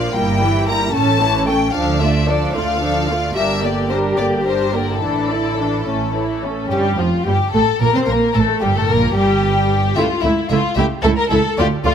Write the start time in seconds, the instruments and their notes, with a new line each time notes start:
Already playing: viola section F3 A#3, violin section D4 D5 F5, cello section F4
0.13 double bass section G1, viola section G3 A#3, cello section E4, violin section G4 A#4 G5
0.41 viola section E3 G3, violin section E4 G4
0.67 viola section G3 A#3, violin section G4 A#4 A#5
0.93 double bass section A1, viola section A3 C#4, violin section C#4 A4 A5, cello section C#4
1.20 viola section E3 A3, violin section E4 C#5
1.46 viola section A3 C#4, violin section C#4 A4 G5
1.73 double bass section D2, viola section F3 D4, violin section D4 A4 F5, cello section D4
1.99 viola section D3 A3, violin section F4 D5 E5
2.27 viola section F3 D4, violin section D4 A4 D5
2.53 double bass section D2, viola section D3 A3, violin section F4 D5 F5, cello section F4
2.80 viola section F3 D4, violin section D4 A4, cello section D4
3.08 viola section D3 A3, cello section F4, violin section F4 D5
3.34 double bass section G1, viola section G3 D4, cello section G4, violin section A#4 E5
3.62 viola section D3 A#3, violin section G4 D5
3.90 viola section G3 D4, violin section A#4 C5
4.18 double bass section G1, viola section D3 A#3, violin section G4 D5
4.46 viola section G3 D4, violin section A#4 C5
4.73 viola section D3 A#3, violin section G4 A#4 D5
5.00 double bass section A1, viola section E3 D4, violin section D4 A4, cello section E4
5.30 viola section D3 E4, violin section E4 D5
5.57 viola section E3 D4, violin section D4 A4
5.86 double bass section A1, viola section A3 C#4, violin section C#4 A4
6.14 viola section E3 A3, violin section E4 C#5
6.43 viola section A3 C#4, violin section C#4 A4
6.70 double bass section G1, cello section G2, viola section G3, violin section G4
6.98 double bass section F1, cello section F2, viola section F3, violin section F4
7.26 double bass section G1, cello section G2, viola section G3, violin section G4
7.54 double bass section A1, cello section A2, viola section A3, violin section A4
7.80 double bass section A#1, cello section A#2, viola section A#3, violin section A#4
7.94 cello section C3, viola section C4, violin section C5
8.07 double bass section A#1, cello section A#2, viola section A#3, violin section A#4
8.34 double bass section A1, cello section A2, viola section A3, violin section A4
8.62 double bass section G1, cello section G2, viola section G3, violin section G4
8.75 cello section A2, viola section A3, violin section A4
8.88 double bass section A#1, cello section A#2, viola section A#3, violin section A#4
9.15 double bass section G1, cello section G2, viola section G3, violin section G4
9.96 cello section C#2, double bass section C#2, viola section A3 E4, violin section F4 E5
10.22 cello section C#2, double bass section C#2, viola section A3 E4, violin section E4 E5
10.49 cello section C#2, double bass section C#2, viola section A3 E4, violin section F4 E5
10.75 double bass section C#2, cello section C#2, viola section A3 E4, violin section G4 E5
11.03 cello section C#2, double bass section C#2, viola section A3 E4, violin section A4 E5
11.17 violin section A#4
11.30 cello section C#2, double bass section C#2, viola section A3 E4, violin section A4 E5
11.58 cello section D2, double bass section D2, viola section A3 F4, violin section G4 D5
11.85 cello section D2, double bass section D2, viola section A3 F4, violin section F4 D5